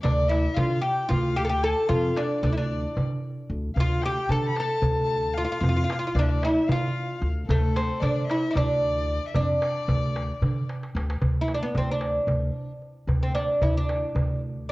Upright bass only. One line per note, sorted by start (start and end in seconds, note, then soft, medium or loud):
0.05 0.45 D2 loud
0.57 0.78 D3 loud
1.10 1.72 D2 medium
1.89 2.10 F2 medium
2.43 2.84 D2 medium
2.97 3.17 D3 medium
3.50 3.70 D2 medium
3.76 4.17 D2 medium
4.29 4.50 D3 loud
4.82 5.44 D2 medium
5.61 5.83 F2 medium
6.15 6.57 D2 loud
6.68 6.89 D3 medium
7.21 7.42 D2 medium
7.49 7.90 D2 medium
8.02 8.22 D3 loud
8.55 9.17 D2 loud
9.36 9.56 F2 medium
9.88 10.30 D2 medium
10.42 10.62 D3 medium
10.95 11.15 D2 medium
11.22 11.63 D2 medium
11.75 12.17 D2 medium
12.27 12.48 D2 medium
13.07 13.49 D2 medium
13.61 14.03 D2 medium
14.15 14.72 D2 medium